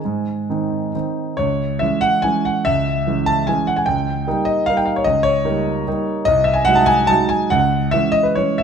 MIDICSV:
0, 0, Header, 1, 2, 480
1, 0, Start_track
1, 0, Key_signature, 4, "minor"
1, 0, Tempo, 452148
1, 40, Time_signature, 3, 2, 24, 8
1, 1481, Tempo, 421941
1, 2921, Tempo, 401606
1, 7721, Tempo, 416667
1, 9161, Tempo, 451467
1, 9911, End_track
2, 0, Start_track
2, 0, Title_t, "Grand piano"
2, 0, Program_c, 0, 0
2, 0, Note_on_c, 0, 68, 46
2, 0, Note_on_c, 0, 75, 47
2, 0, Note_on_c, 0, 80, 55
2, 53, Note_on_c, 0, 44, 54
2, 249, Control_c, 0, 64, 127
2, 506, Note_off_c, 0, 44, 0
2, 528, Note_on_c, 0, 51, 41
2, 529, Note_on_c, 0, 60, 40
2, 539, Note_on_c, 0, 63, 41
2, 956, Note_off_c, 0, 68, 0
2, 958, Note_off_c, 0, 75, 0
2, 965, Note_off_c, 0, 51, 0
2, 965, Note_off_c, 0, 60, 0
2, 971, Note_off_c, 0, 63, 0
2, 993, Note_off_c, 0, 80, 0
2, 1006, Note_on_c, 0, 51, 40
2, 1010, Note_on_c, 0, 60, 41
2, 1011, Control_c, 0, 64, 0
2, 1014, Note_on_c, 0, 63, 43
2, 1441, Note_off_c, 0, 51, 0
2, 1443, Note_off_c, 0, 60, 0
2, 1445, Note_off_c, 0, 63, 0
2, 1453, Note_on_c, 0, 73, 92
2, 1475, Note_on_c, 0, 37, 61
2, 1717, Control_c, 0, 64, 127
2, 1934, Note_on_c, 0, 76, 95
2, 1941, Note_off_c, 0, 37, 0
2, 1943, Note_off_c, 0, 73, 0
2, 1958, Note_on_c, 0, 52, 46
2, 1967, Note_on_c, 0, 56, 49
2, 1968, Control_c, 0, 64, 0
2, 1972, Note_on_c, 0, 61, 55
2, 2180, Note_on_c, 0, 78, 112
2, 2186, Note_off_c, 0, 76, 0
2, 2396, Note_off_c, 0, 52, 0
2, 2401, Note_off_c, 0, 56, 0
2, 2404, Note_off_c, 0, 61, 0
2, 2422, Note_on_c, 0, 80, 101
2, 2433, Note_off_c, 0, 78, 0
2, 2448, Note_on_c, 0, 52, 46
2, 2452, Note_on_c, 0, 56, 47
2, 2459, Note_on_c, 0, 61, 53
2, 2676, Note_off_c, 0, 80, 0
2, 2683, Note_on_c, 0, 78, 89
2, 2879, Note_off_c, 0, 52, 0
2, 2881, Note_off_c, 0, 56, 0
2, 2885, Note_off_c, 0, 61, 0
2, 2906, Note_on_c, 0, 76, 104
2, 2920, Note_off_c, 0, 78, 0
2, 2933, Note_on_c, 0, 37, 63
2, 3113, Control_c, 0, 64, 127
2, 3398, Note_off_c, 0, 37, 0
2, 3412, Note_on_c, 0, 52, 51
2, 3415, Note_on_c, 0, 56, 53
2, 3430, Note_on_c, 0, 61, 51
2, 3641, Note_on_c, 0, 81, 107
2, 3642, Note_off_c, 0, 76, 0
2, 3851, Note_off_c, 0, 52, 0
2, 3852, Note_off_c, 0, 56, 0
2, 3859, Note_off_c, 0, 61, 0
2, 3887, Note_on_c, 0, 80, 94
2, 3891, Note_off_c, 0, 81, 0
2, 3911, Note_on_c, 0, 52, 49
2, 3911, Note_on_c, 0, 56, 53
2, 3913, Control_c, 0, 64, 0
2, 3920, Note_on_c, 0, 61, 53
2, 4129, Note_on_c, 0, 78, 93
2, 4130, Note_off_c, 0, 80, 0
2, 4240, Note_on_c, 0, 80, 80
2, 4247, Note_off_c, 0, 78, 0
2, 4324, Note_off_c, 0, 52, 0
2, 4324, Note_off_c, 0, 56, 0
2, 4329, Note_off_c, 0, 61, 0
2, 4352, Note_on_c, 0, 79, 95
2, 4357, Note_off_c, 0, 80, 0
2, 4381, Note_on_c, 0, 37, 65
2, 4584, Control_c, 0, 64, 127
2, 4830, Note_off_c, 0, 37, 0
2, 4848, Control_c, 0, 64, 0
2, 4848, Note_on_c, 0, 58, 52
2, 4851, Note_on_c, 0, 55, 55
2, 4856, Note_on_c, 0, 63, 58
2, 5061, Note_on_c, 0, 75, 103
2, 5082, Note_off_c, 0, 79, 0
2, 5296, Note_off_c, 0, 58, 0
2, 5297, Note_off_c, 0, 55, 0
2, 5300, Note_off_c, 0, 63, 0
2, 5312, Note_on_c, 0, 77, 105
2, 5324, Note_off_c, 0, 75, 0
2, 5344, Note_on_c, 0, 55, 47
2, 5347, Note_on_c, 0, 58, 51
2, 5355, Note_on_c, 0, 63, 55
2, 5442, Note_on_c, 0, 79, 81
2, 5445, Note_off_c, 0, 77, 0
2, 5544, Note_on_c, 0, 77, 76
2, 5565, Note_off_c, 0, 79, 0
2, 5671, Note_off_c, 0, 77, 0
2, 5673, Note_on_c, 0, 73, 84
2, 5756, Note_off_c, 0, 55, 0
2, 5758, Note_off_c, 0, 58, 0
2, 5762, Note_off_c, 0, 63, 0
2, 5770, Note_on_c, 0, 75, 108
2, 5791, Note_off_c, 0, 73, 0
2, 5802, Note_on_c, 0, 37, 61
2, 5993, Note_on_c, 0, 73, 109
2, 6012, Note_off_c, 0, 75, 0
2, 6019, Control_c, 0, 64, 127
2, 6252, Note_off_c, 0, 37, 0
2, 6253, Note_on_c, 0, 58, 53
2, 6254, Note_on_c, 0, 55, 54
2, 6255, Note_on_c, 0, 63, 58
2, 6704, Note_off_c, 0, 55, 0
2, 6704, Note_off_c, 0, 58, 0
2, 6705, Note_off_c, 0, 63, 0
2, 6760, Note_on_c, 0, 55, 53
2, 6767, Note_on_c, 0, 58, 52
2, 6769, Control_c, 0, 64, 0
2, 6770, Note_on_c, 0, 63, 58
2, 7197, Note_off_c, 0, 55, 0
2, 7200, Note_off_c, 0, 58, 0
2, 7202, Note_off_c, 0, 63, 0
2, 7213, Note_on_c, 0, 75, 125
2, 7227, Note_off_c, 0, 73, 0
2, 7240, Note_on_c, 0, 36, 71
2, 7440, Note_on_c, 0, 76, 91
2, 7452, Control_c, 0, 64, 127
2, 7463, Note_off_c, 0, 75, 0
2, 7552, Note_on_c, 0, 80, 93
2, 7579, Note_off_c, 0, 76, 0
2, 7685, Note_on_c, 0, 78, 119
2, 7697, Note_off_c, 0, 80, 0
2, 7703, Note_off_c, 0, 36, 0
2, 7710, Note_on_c, 0, 56, 57
2, 7714, Note_on_c, 0, 54, 59
2, 7715, Note_on_c, 0, 63, 55
2, 7812, Note_on_c, 0, 81, 95
2, 7823, Note_off_c, 0, 78, 0
2, 7933, Note_on_c, 0, 80, 120
2, 7947, Note_off_c, 0, 81, 0
2, 8160, Note_off_c, 0, 56, 0
2, 8161, Note_off_c, 0, 54, 0
2, 8162, Note_off_c, 0, 63, 0
2, 8176, Note_on_c, 0, 81, 119
2, 8196, Note_off_c, 0, 80, 0
2, 8200, Note_on_c, 0, 56, 51
2, 8203, Note_on_c, 0, 54, 53
2, 8205, Note_on_c, 0, 63, 60
2, 8227, Control_c, 0, 64, 0
2, 8425, Note_on_c, 0, 80, 101
2, 8439, Note_off_c, 0, 81, 0
2, 8636, Note_off_c, 0, 56, 0
2, 8637, Note_off_c, 0, 54, 0
2, 8638, Note_off_c, 0, 63, 0
2, 8672, Note_off_c, 0, 80, 0
2, 8672, Note_on_c, 0, 78, 107
2, 8690, Note_on_c, 0, 37, 73
2, 8879, Control_c, 0, 64, 127
2, 9146, Note_on_c, 0, 76, 106
2, 9148, Note_off_c, 0, 37, 0
2, 9153, Note_off_c, 0, 78, 0
2, 9168, Control_c, 0, 64, 0
2, 9172, Note_on_c, 0, 52, 51
2, 9177, Note_on_c, 0, 56, 53
2, 9177, Note_on_c, 0, 61, 55
2, 9364, Note_on_c, 0, 75, 115
2, 9388, Note_off_c, 0, 76, 0
2, 9486, Note_on_c, 0, 71, 67
2, 9499, Note_off_c, 0, 75, 0
2, 9599, Note_off_c, 0, 52, 0
2, 9601, Note_off_c, 0, 56, 0
2, 9601, Note_off_c, 0, 61, 0
2, 9616, Note_on_c, 0, 73, 92
2, 9621, Note_off_c, 0, 71, 0
2, 9637, Note_on_c, 0, 52, 47
2, 9645, Note_on_c, 0, 56, 43
2, 9645, Note_on_c, 0, 61, 53
2, 9856, Note_on_c, 0, 76, 87
2, 9870, Note_off_c, 0, 73, 0
2, 9911, Note_off_c, 0, 52, 0
2, 9911, Note_off_c, 0, 56, 0
2, 9911, Note_off_c, 0, 61, 0
2, 9911, Note_off_c, 0, 76, 0
2, 9911, End_track
0, 0, End_of_file